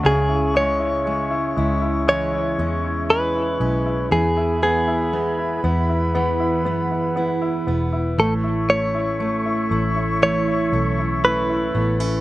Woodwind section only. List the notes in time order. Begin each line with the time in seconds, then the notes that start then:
Already playing: C#6
0.04 G#4 C#5 E5
4.11 B4 E5 B5
6.15 F#5
8.19 A4 C#5 E5 C#6